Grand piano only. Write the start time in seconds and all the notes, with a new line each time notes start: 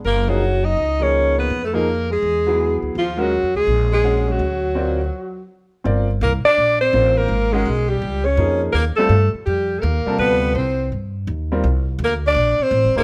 0.28 F3 A#3 D#4 G#4
1.00 F3 A#3 D#4 G#4
1.73 F3 A#3 D#4 G#4
2.47 F#3 B3 E4 G#4
3.17 G#3 C#4 F#4 A#4
4.03 G#3 C#4 F#4 C#5
4.75 C4 F4 A#4 D5
5.84 C4 F4 A#4 D5
6.93 C4 F4 A#4 C5
7.53 G#3 C#4 F#4 A#4
8.38 F3 A#3 D#4 G#4
8.98 G3 C4 F4 A4
10.06 C3 G3 F4 A4
11.52 G3 C4 F4 A#4
12.96 A#3 D#4 G#4 C5